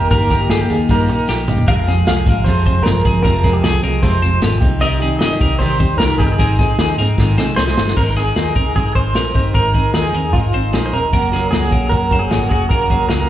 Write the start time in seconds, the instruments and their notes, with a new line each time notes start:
Already playing: analog synth pad D#3 A#3 G5, steel-string acoustic guitar A#3 D#4 G4, clean electric guitar G4
0.11 fingered electric bass G1, steel-string acoustic guitar G3 A#3 D#4 G4, clean electric guitar A#4, kick, closed hi-hat, tambourine
0.30 steel-string acoustic guitar A#3 D#4 G4, clean electric guitar A#4, kick, snare, closed hi-hat
0.40 clean electric guitar G4
0.50 steel-string acoustic guitar G3 A#3 D#4 G4, clean electric guitar G4 G#4, snare, closed hi-hat, tambourine
0.69 fingered electric bass D#2, steel-string acoustic guitar D#4 G4, clean electric guitar F4, closed hi-hat, tambourine
0.73 steel-string acoustic guitar A#3
0.89 fingered electric bass G2, steel-string acoustic guitar G3 A#3 D#4 G4, clean electric guitar A#4, kick, closed hi-hat, tambourine
1.08 fingered electric bass A#2, steel-string acoustic guitar A#3 D#4 G4, clean electric guitar D#4, closed hi-hat, tambourine
1.28 fingered electric bass A#1, steel-string acoustic guitar G3 A#3 D#4 G4, clean electric guitar G4, snare, tambourine
1.48 fingered electric bass G1, steel-string acoustic guitar A#3 D#4 G4, mid tom, tambourine
1.58 floor tom
1.67 fingered electric bass F1, steel-string acoustic guitar F2 C3 F3 G#3 C4 G#4, analog synth pad C3 F3 G#3 F4, clean electric guitar A#4 F5, kick, closed hi-hat
1.87 steel-string acoustic guitar F3 G#3 C4 G#4, clean electric guitar G#4, snare, closed hi-hat, tambourine
2.06 fingered electric bass C2, steel-string acoustic guitar F3 G#3 C4 G#4, clean electric guitar G#4 F5, snare, closed hi-hat, tambourine
2.26 fingered electric bass G#1, steel-string acoustic guitar F3 G#3 C4 G#4, clean electric guitar A#4, kick, closed hi-hat, tambourine
2.44 fingered electric bass F2, steel-string acoustic guitar F2 C3 F3 G#3 C4, clean electric guitar C5, kick, closed hi-hat, tambourine
2.49 steel-string acoustic guitar G#4
2.66 fingered electric bass F1, steel-string acoustic guitar F3 G#3 C4 G#4, clean electric guitar C5, kick, closed hi-hat, tambourine
2.83 fingered electric bass G1, steel-string acoustic guitar F3 G#3 C4, clean electric guitar A#4, snare, closed hi-hat, tambourine
2.88 steel-string acoustic guitar G#4
3.05 fingered electric bass G1, steel-string acoustic guitar F3 G#3 C4 G#4, clean electric guitar G#4, kick, closed hi-hat, tambourine
3.23 fingered electric bass F1, steel-string acoustic guitar F2 C3 F3 G#3 C4 G#4, clean electric guitar A#4, kick, closed hi-hat, tambourine
3.44 steel-string acoustic guitar F3 G#3 C4 G#4, clean electric guitar G#4, kick, snare, closed hi-hat, tambourine
3.53 clean electric guitar G4
3.62 fingered electric bass C2, steel-string acoustic guitar F3 G#3 C4 G#4, clean electric guitar G#4, snare, closed hi-hat, tambourine
3.82 fingered electric bass C2, steel-string acoustic guitar F3 G#3 C4 G#4, clean electric guitar A#4, closed hi-hat, tambourine
4.02 steel-string acoustic guitar F2 C3 F3 G#3 C4 G#4, fingered electric bass F2, clean electric guitar C5, kick, closed hi-hat, tambourine
4.22 fingered electric bass F1, steel-string acoustic guitar F3 G#3 C4 G#4, clean electric guitar C5, closed hi-hat, tambourine
4.42 fingered electric bass G#1, steel-string acoustic guitar F3 G#3 C4 G#4, clean electric guitar G4, snare, closed hi-hat, tambourine
4.61 fingered electric bass C2, analog synth pad D#3 G3 D#4, steel-string acoustic guitar C4 D#4 G4, kick, closed hi-hat, tambourine
4.80 steel-string acoustic guitar C3 D#3 C4 D#4 G4, clean electric guitar A#4 D#5, closed hi-hat, tambourine
5.00 steel-string acoustic guitar C4 D#4 G4, clean electric guitar G#4, closed hi-hat, tambourine
5.19 fingered electric bass G1, steel-string acoustic guitar D#3 C4 D#4, clean electric guitar G#4 D#5, snare, closed hi-hat, tambourine
5.24 steel-string acoustic guitar G4
5.39 fingered electric bass C2, steel-string acoustic guitar C4 D#4 G4, clean electric guitar A#4, kick, closed hi-hat, tambourine
5.59 steel-string acoustic guitar C3 D#3 C4 D#4 G4, fingered electric bass C3, clean electric guitar C5, kick, closed hi-hat, tambourine
5.78 fingered electric bass D#2, steel-string acoustic guitar C4 D#4 G4, clean electric guitar C5, kick, closed hi-hat, tambourine
5.98 fingered electric bass C2, steel-string acoustic guitar D#3 C4 D#4, clean electric guitar A#4, snare, closed hi-hat, tambourine
6.02 steel-string acoustic guitar G4
6.08 clean electric guitar A#4
6.18 fingered electric bass G1, steel-string acoustic guitar C4 D#4 G4, clean electric guitar G4 G#4, kick, closed hi-hat, tambourine
6.27 clean electric guitar A#4
6.32 clean electric guitar G#4
6.38 fingered electric bass G#1, steel-string acoustic guitar G#2 D#3 G#3 C4 D#4 G#4, analog synth pad G#3, clean electric guitar A#4, kick, closed hi-hat, tambourine
6.58 steel-string acoustic guitar G#3 C4 D#4 G#4, clean electric guitar G#4, kick, snare, closed hi-hat, tambourine
6.78 fingered electric bass D#2, steel-string acoustic guitar G#3 C4 D#4 G#4, clean electric guitar G#4, snare, closed hi-hat, tambourine
6.98 fingered electric bass G#2, steel-string acoustic guitar G#3 C4 D#4 G#4, clean electric guitar A#4, closed hi-hat, tambourine
7.18 steel-string acoustic guitar G#2 D#3 G#3 C4 D#4 G#4, fingered electric bass G#2, kick, snare, tambourine
7.37 fingered electric bass C3, steel-string acoustic guitar G#3 C4 D#4 G#4, clean electric guitar C5, snare, tambourine
7.56 fingered electric bass C2, steel-string acoustic guitar G#3 C4 D#4 G#4, clean electric guitar G#4 C5, snare, tambourine
7.68 snare
7.76 fingered electric bass G1, steel-string acoustic guitar G#3 C4 D#4 G#4, snare, tambourine
7.88 snare
7.95 fingered electric bass G#1, steel-string acoustic guitar G#3 C4 D#4 A#4, clean electric guitar A#4, kick, crash
8.11 clean electric guitar A#4
8.16 steel-string acoustic guitar C4 D#4 A#4, clean electric guitar G#4, snare, closed hi-hat
8.35 fingered electric bass D#2, steel-string acoustic guitar G#3 C4 D#4 A#4, clean electric guitar G#4, snare, closed hi-hat
8.55 fingered electric bass C2, steel-string acoustic guitar C4 D#4 A#4, clean electric guitar A#4, kick, closed hi-hat
8.75 fingered electric bass G#2, steel-string acoustic guitar G#3 C4 D#4 A#4, clean electric guitar G#4, kick, closed hi-hat
8.94 fingered electric bass G#1, steel-string acoustic guitar C4 D#4 A#4, clean electric guitar C5, kick, closed hi-hat
9.13 fingered electric bass A#1, steel-string acoustic guitar G#3 C4 D#4 A#4, clean electric guitar A#4, snare, closed hi-hat
9.33 fingered electric bass G1, steel-string acoustic guitar C4 D#4 A#4, clean electric guitar G4, kick, closed hi-hat
9.53 fingered electric bass G#1, steel-string acoustic guitar G#3 C4 D#4 A#4, clean electric guitar A#4, kick, closed hi-hat
9.74 steel-string acoustic guitar C4 D#4 A#4, clean electric guitar G#4, kick, closed hi-hat
9.94 fingered electric bass D#2, steel-string acoustic guitar G#3 C4 D#4 A#4, clean electric guitar G#4, snare, closed hi-hat
10.13 fingered electric bass D#2, steel-string acoustic guitar C4 D#4 A#4, clean electric guitar A#4, closed hi-hat
10.33 fingered electric bass G#2, steel-string acoustic guitar G#3 C4 D#4 A#4, clean electric guitar F4, kick, closed hi-hat
10.53 fingered electric bass G#1, steel-string acoustic guitar C4 D#4 A#4, clean electric guitar C5, closed hi-hat
10.72 fingered electric bass A#1, steel-string acoustic guitar G#3 C4 D#4 A#4, clean electric guitar G#4, snare, closed hi-hat
10.86 clean electric guitar C5
10.91 fingered electric bass D#1, steel-string acoustic guitar C4 D#4 A#4, clean electric guitar A#4, closed hi-hat
11.12 fingered electric bass F#1, steel-string acoustic guitar F#2 C#3 F#3 A#3 C#4 F#4, clean electric guitar A#4, kick, closed hi-hat
11.32 steel-string acoustic guitar F#3 A#3 C#4 F#4, clean electric guitar G#4, snare, closed hi-hat
11.51 fingered electric bass C#2, steel-string acoustic guitar F#2 C#3 F#3 A#3 C#4 F#4, clean electric guitar G#4, snare, closed hi-hat
11.71 fingered electric bass A#1, steel-string acoustic guitar F#3 A#3 C#4 F#4, clean electric guitar A#4, kick, closed hi-hat
11.89 fingered electric bass F#2, steel-string acoustic guitar F#3 A#3 C#4, clean electric guitar A#4, kick, closed hi-hat
11.94 steel-string acoustic guitar F#4
12.11 fingered electric bass F#1, steel-string acoustic guitar F#3 A#3 C#4 F#4, clean electric guitar C5, kick, closed hi-hat
12.19 clean electric guitar G#4
12.30 fingered electric bass G#1, steel-string acoustic guitar F#2 C#3 F#3 A#3 C#4 F#4, clean electric guitar A#4, snare, closed hi-hat
12.49 fingered electric bass F1, steel-string acoustic guitar F#3 A#3 C#4 F#4, clean electric guitar F#4 G#4, kick, closed hi-hat
12.69 fingered electric bass F#1, steel-string acoustic guitar F#2 C#3 F#3 A#3 C#4 F#4, clean electric guitar A#4, kick, closed hi-hat
12.90 steel-string acoustic guitar F#3 A#3 C#4 F#4, clean electric guitar G#4, kick, closed hi-hat
13.09 fingered electric bass C#2, steel-string acoustic guitar F#2 C#3 F#3 A#3 C#4 F#4, clean electric guitar G#4 A#4, snare, closed hi-hat